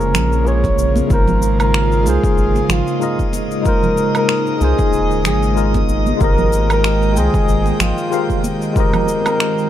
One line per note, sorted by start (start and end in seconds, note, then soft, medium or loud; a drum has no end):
0.00 0.16 F1 loud
0.00 6.17 C#3 medium
0.00 9.70 G#3 medium
0.00 0.45 A#3 medium
0.00 8.72 A#3 medium
0.00 1.06 C#4 medium
0.00 1.12 C#4 medium
0.00 0.45 F4 medium
0.00 0.46 G#4 medium
0.00 0.49 A#4 loud
0.00 1.12 C5 medium
0.00 0.44 C#5 loud
0.00 shaker soft
0.14 0.72 A#1 medium
0.14 finger snap medium
0.14 low conga medium
0.14 shaker medium
0.33 shaker soft
0.45 1.06 A#3 medium
0.45 1.06 F4 medium
0.45 1.07 G#4 medium
0.45 1.07 A#4 medium
0.45 0.97 C#5 loud
0.45 1.08 C#5 medium
0.45 shaker soft
0.64 kick medium
0.64 muted conga medium
0.64 high conga medium
0.64 shaker soft
0.78 1.02 A#1 medium
0.78 shaker medium
0.96 high conga medium
0.96 shaker soft
1.07 2.07 G#1 loud
1.07 2.01 G#3 medium
1.07 2.02 D#4 medium
1.07 3.63 F4 medium
1.07 2.02 F4 medium
1.07 9.70 D#5 medium
1.07 9.70 D#6 medium
1.07 kick loud
1.07 shaker soft
1.12 2.03 A#4 medium
1.12 1.57 A#4 loud
1.12 2.04 C5 medium
1.27 high conga medium
1.27 low conga medium
1.27 shaker soft
1.42 shaker medium
1.60 2.09 A#4 loud
1.60 muted conga soft
1.60 low woodblock medium
1.60 shaker soft
1.74 finger snap medium
1.74 shaker soft
1.92 shaker soft
2.02 2.18 C2 medium
2.02 2.96 G#3 medium
2.02 2.97 D#4 medium
2.02 2.98 F4 medium
2.02 muted conga soft
2.06 2.74 G#4 loud
2.06 2.99 A#4 medium
2.06 3.00 C5 loud
2.06 shaker medium
2.24 kick loud
2.24 shaker soft
2.38 2.61 G#1 medium
2.38 shaker soft
2.56 muted conga soft
2.56 shaker soft
2.69 2.82 G#1 medium
2.69 3.35 F4 medium
2.69 finger snap medium
2.69 low conga medium
2.69 shaker medium
2.87 shaker soft
2.99 3.60 G#3 medium
2.99 3.61 D#4 medium
2.99 3.62 F4 medium
2.99 3.62 A#4 medium
2.99 3.63 D#5 medium
2.99 shaker soft
3.19 kick medium
3.19 shaker soft
3.33 muted conga medium
3.33 shaker medium
3.51 shaker soft
3.61 4.56 G#3 medium
3.61 4.57 D#4 medium
3.61 6.18 D#4 medium
3.61 4.57 F4 medium
3.65 4.12 A#4 loud
3.65 4.58 A#4 medium
3.65 4.59 C5 medium
3.65 kick loud
3.65 shaker soft
3.83 low conga medium
3.83 shaker soft
3.97 shaker medium
4.15 4.64 A#4 loud
4.15 low woodblock medium
4.15 shaker soft
4.29 finger snap medium
4.29 shaker soft
4.47 shaker soft
4.57 4.74 C2 medium
4.57 5.51 G#3 medium
4.57 5.52 D#4 medium
4.57 5.53 F4 medium
4.61 5.26 G#4 loud
4.61 5.54 A#4 medium
4.61 5.55 C5 loud
4.61 muted conga soft
4.61 shaker medium
4.79 kick medium
4.79 shaker soft
4.93 5.27 D#1 loud
4.93 shaker soft
5.11 shaker soft
5.25 5.82 G#1 medium
5.25 5.86 G#4 medium
5.25 finger snap medium
5.25 low conga medium
5.25 shaker medium
5.43 shaker soft
5.55 6.16 G#3 medium
5.55 6.17 D#4 medium
5.55 6.17 F4 medium
5.55 6.18 A#4 medium
5.55 6.18 D#5 medium
5.55 shaker soft
5.74 kick medium
5.74 muted conga medium
5.74 high conga medium
5.74 shaker soft
5.89 6.12 G#1 medium
5.89 shaker medium
6.06 high conga medium
6.06 shaker soft
6.17 7.18 G#1 loud
6.17 9.70 D#3 medium
6.17 7.11 G#3 medium
6.17 7.12 F4 medium
6.17 7.13 G4 medium
6.17 9.70 G5 medium
6.17 kick loud
6.17 shaker soft
6.21 7.13 A#4 medium
6.21 6.68 A#4 loud
6.21 7.14 C5 medium
6.21 7.15 D#5 loud
6.38 high conga medium
6.38 low conga medium
6.38 shaker soft
6.53 shaker medium
6.70 7.20 A#4 loud
6.70 muted conga soft
6.70 low woodblock medium
6.70 shaker soft
6.84 finger snap medium
6.84 shaker soft
7.02 shaker soft
7.13 7.29 C2 medium
7.13 8.07 G#3 medium
7.13 8.08 F4 medium
7.13 8.08 G5 medium
7.17 7.83 G#4 loud
7.17 8.09 A#4 medium
7.17 8.10 C5 medium
7.17 8.10 D#5 medium
7.17 muted conga soft
7.17 shaker medium
7.34 kick loud
7.34 shaker soft
7.48 7.72 G#1 medium
7.48 shaker soft
7.65 muted conga medium
7.65 shaker soft
7.80 7.93 G#1 medium
7.80 8.45 F4 medium
7.80 finger snap medium
7.80 low conga medium
7.80 shaker medium
7.98 shaker soft
8.10 8.72 G#3 medium
8.10 8.72 F4 medium
8.10 8.72 G4 medium
8.10 8.73 A#4 medium
8.10 8.73 C5 medium
8.10 8.73 F5 loud
8.10 shaker soft
8.30 kick medium
8.30 shaker soft
8.44 muted conga medium
8.44 shaker medium
8.62 shaker soft
8.73 9.67 G#3 medium
8.73 9.70 C4 medium
8.73 9.67 F4 medium
8.73 9.68 G4 medium
8.73 kick loud
8.73 shaker soft
8.77 9.69 A#4 medium
8.77 9.23 A#4 loud
8.77 9.70 C5 medium
8.77 9.70 D#5 medium
8.93 high conga medium
8.93 low conga medium
8.93 low woodblock medium
8.93 shaker soft
9.08 shaker medium
9.26 9.70 A#4 loud
9.26 muted conga soft
9.26 low woodblock medium
9.26 shaker soft
9.40 finger snap medium
9.40 shaker soft
9.58 shaker soft